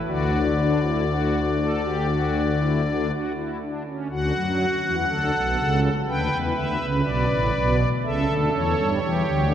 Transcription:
0.07 3.11 D2 medium
0.07 3.11 D3 medium
0.07 0.39 F#4 medium
0.07 3.11 D5 medium
0.58 0.80 D4 medium
0.83 1.05 E4 medium
1.09 1.40 F#4 medium
1.59 1.81 A4 soft
1.85 2.06 G4 medium
2.10 2.41 F#4 medium
2.60 2.82 E4 soft
2.86 3.07 D4 soft
3.11 3.32 F#4 soft
3.37 3.58 E4 soft
3.61 3.83 D4 soft
3.86 4.07 C#4 soft
4.10 4.32 D2 medium
4.10 4.32 D3 medium
4.10 4.95 F#4 medium
4.10 5.80 F#5 medium
4.35 4.66 F#2 medium
4.35 4.66 F#3 medium
4.84 5.06 E2 medium
4.84 5.06 E3 medium
5.08 5.30 D2 medium
5.08 5.30 D3 medium
5.08 5.94 A4 medium
5.35 5.56 B1 medium
5.35 5.56 B2 medium
5.58 5.89 C#2 medium
5.58 5.89 C#3 medium
6.07 6.28 D2 medium
6.07 6.29 D3 medium
6.07 7.76 B4 medium
6.07 6.38 G5 medium
6.31 6.52 E2 medium
6.31 6.52 E3 medium
6.55 6.77 D2 medium
6.55 6.77 D3 medium
6.55 6.86 E5 medium
6.80 7.01 C#2 medium
6.80 7.02 C#3 medium
7.03 7.26 B1 medium
7.03 7.25 B2 medium
7.03 7.89 D5 medium
7.28 7.50 A1 medium
7.28 7.51 A2 medium
7.53 7.85 B1 medium
7.53 7.84 B2 medium
8.03 8.25 C#2 medium
8.03 8.25 C#3 medium
8.03 8.88 A4 medium
8.03 8.34 E5 medium
8.28 8.49 D2 medium
8.28 8.49 D3 medium
8.53 8.74 E2 medium
8.53 8.75 E3 medium
8.53 9.54 C#5 medium
8.78 8.99 G2 medium
8.78 8.99 G3 medium
9.03 9.24 E2 medium
9.03 9.24 E3 medium
9.03 9.54 G4 medium
9.26 9.54 D2 medium
9.26 9.54 D3 medium

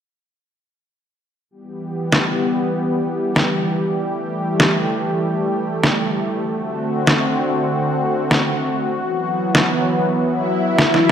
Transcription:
1.51 6.42 E3 medium
1.51 6.41 G3 medium
1.51 3.96 B3 medium
1.51 6.42 G4 medium
2.12 snare loud
3.36 snare loud
3.98 8.89 A3 medium
4.60 snare loud
5.84 snare loud
6.45 8.90 D3 medium
6.45 8.90 C4 medium
6.45 11.12 F#4 medium
7.07 snare loud
8.31 snare loud
8.93 11.12 E3 medium
8.93 11.12 F#3 medium
8.93 11.12 B3 medium
9.55 snare loud
10.17 swell medium
10.79 11.12 E4 loud
10.79 snare loud
10.94 snare soft

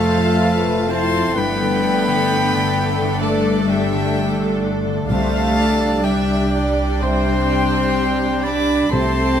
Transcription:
0.00 1.32 F1 medium
0.00 1.39 F2 medium
0.00 0.16 C3 soft
0.00 1.32 F3 medium
0.00 0.89 A3 medium
0.00 1.32 A3 medium
0.00 1.33 A3 medium
0.00 3.43 A3 soft
0.00 1.22 C4 soft
0.00 1.33 F4 medium
0.00 1.40 F4 medium
0.00 0.91 A4 medium
0.00 0.42 C5 medium
0.00 0.89 F5 medium
0.00 0.92 A5 medium
0.17 0.63 C3 medium
0.42 0.89 B4 medium
0.64 1.12 C3 soft
0.88 1.36 C4 medium
0.88 1.39 E4 soft
0.88 5.09 A4 medium
0.88 1.35 C5 medium
0.88 1.36 A5 medium
0.88 1.39 C6 medium
1.13 1.40 C3 soft
1.35 5.05 G1 medium
1.35 3.20 G2 medium
1.35 5.05 A3 medium
1.35 3.21 B3 medium
1.35 5.05 D4 medium
1.35 5.06 D4 medium
1.35 2.91 B4 medium
1.35 3.17 G5 medium
1.35 3.22 B5 medium
1.60 2.06 D3 soft
1.83 2.29 D4 medium
2.07 2.53 D3 soft
2.30 2.75 D4 soft
2.54 2.98 D3 soft
2.76 3.67 D4 soft
2.99 3.91 D3 soft
3.20 5.12 G2 medium
3.20 3.68 A3 medium
3.20 3.64 A4 medium
3.20 3.68 D5 medium
3.20 3.71 A5 medium
3.44 5.13 A3 soft
3.67 4.60 G3 medium
3.67 4.14 D4 soft
3.67 4.61 G4 medium
3.67 4.62 E5 medium
3.67 4.63 G5 medium
3.92 4.38 D3 medium
4.16 4.62 D4 soft
4.39 4.84 D3 soft
4.63 5.56 D4 soft
4.85 5.13 D3 soft
5.08 8.89 C2 medium
5.08 7.00 C3 medium
5.08 6.48 C3 medium
5.08 8.74 G3 medium
5.08 8.89 G3 medium
5.08 5.99 A3 medium
5.08 8.74 D4 medium
5.08 8.89 D4 medium
5.08 6.05 A4 medium
5.08 5.57 C5 medium
5.08 5.99 F5 medium
5.08 6.06 A5 loud
5.57 6.03 D4 medium
5.57 6.04 D5 medium
6.03 7.01 G3 medium
6.03 6.51 D4 soft
6.03 7.03 G4 medium
6.03 7.02 D5 medium
6.03 6.53 E5 medium
6.03 7.04 G5 medium
6.52 7.48 D4 soft
6.52 7.01 D5 medium
7.01 8.91 C3 medium
7.01 8.44 C4 medium
7.01 8.45 C5 medium
7.01 7.50 C5 medium
7.01 8.45 G5 medium
7.01 8.48 C6 medium
7.26 9.40 G3 soft
7.50 7.96 D4 soft
7.50 8.93 G4 medium
7.97 8.43 D4 soft
8.43 8.92 D4 medium
8.43 8.91 D5 medium
8.43 8.92 B5 medium
8.43 8.92 D6 medium
8.91 9.40 C2 medium
8.91 9.40 C3 medium
8.91 9.40 A3 medium
8.91 9.40 C4 medium
8.91 9.40 G4 medium
8.91 9.40 A4 medium
8.91 9.40 C5 medium
8.91 9.40 A5 medium
8.91 9.40 C6 loud

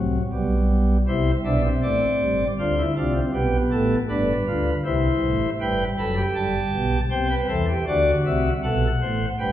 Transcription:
0.00 0.18 C2 medium
0.00 0.18 C3 medium
0.00 0.22 F#3 medium
0.33 0.98 B1 medium
0.33 0.97 B2 medium
0.33 0.97 G3 medium
1.07 1.31 C2 medium
1.07 1.31 C3 medium
1.07 1.31 E4 medium
1.07 1.31 C5 medium
1.45 1.68 B1 medium
1.45 1.68 B2 medium
1.45 1.61 D4 medium
1.45 1.68 E5 medium
1.64 2.45 C4 medium
1.82 2.06 A1 medium
1.82 2.06 A2 medium
1.82 2.47 D5 medium
2.20 2.44 G1 medium
2.20 2.44 G2 medium
2.59 2.82 D2 medium
2.59 2.82 D3 medium
2.59 2.75 F4 medium
2.59 2.82 C5 medium
2.78 2.94 E4 medium
2.96 3.20 C2 medium
2.96 3.20 C3 medium
2.96 3.12 D4 medium
2.96 3.20 F4 medium
3.15 3.31 C4 medium
3.33 3.57 B1 medium
3.33 3.57 B2 medium
3.33 3.98 B3 medium
3.33 3.57 G4 medium
3.72 3.95 A1 medium
3.72 3.95 A2 medium
3.72 3.95 A4 medium
4.09 4.32 G1 medium
4.09 4.32 G2 medium
4.09 4.32 D4 medium
4.09 4.74 B4 medium
4.47 4.70 D2 medium
4.47 4.71 D3 medium
4.47 4.70 F4 medium
4.85 5.08 C2 medium
4.85 5.08 C3 medium
4.85 5.50 E4 medium
4.85 5.50 C5 medium
5.23 5.46 A1 medium
5.23 5.46 A2 medium
5.60 5.84 G1 medium
5.60 5.84 G2 medium
5.60 5.84 B4 medium
5.60 5.84 G5 medium
5.98 6.22 F#1 medium
5.98 6.22 F#2 medium
5.98 6.15 A4 medium
5.98 6.22 B5 medium
6.16 6.98 G4 medium
6.34 6.58 G1 medium
6.34 6.59 G2 medium
6.34 7.01 A5 medium
6.73 6.97 B1 medium
6.73 6.97 B2 medium
7.10 7.34 C2 medium
7.10 7.35 C3 medium
7.10 7.27 C5 medium
7.10 7.35 G5 medium
7.30 7.46 B4 medium
7.49 7.73 E2 medium
7.49 7.73 E3 medium
7.49 7.66 A4 medium
7.49 7.73 C5 medium
7.68 7.85 G4 medium
7.87 8.11 D2 medium
7.87 8.11 D3 medium
7.87 8.53 F#4 medium
7.87 8.11 D5 medium
8.25 8.49 C2 medium
8.25 8.49 C3 medium
8.25 8.49 E5 medium
8.63 8.87 B1 medium
8.63 8.87 B2 medium
8.63 8.87 A4 medium
8.63 9.29 F#5 medium
9.02 9.25 A1 medium
9.02 9.25 A2 medium
9.02 9.25 C5 medium
9.39 9.52 G1 medium
9.39 9.52 G2 medium
9.39 9.52 B4 medium
9.39 9.52 G5 medium

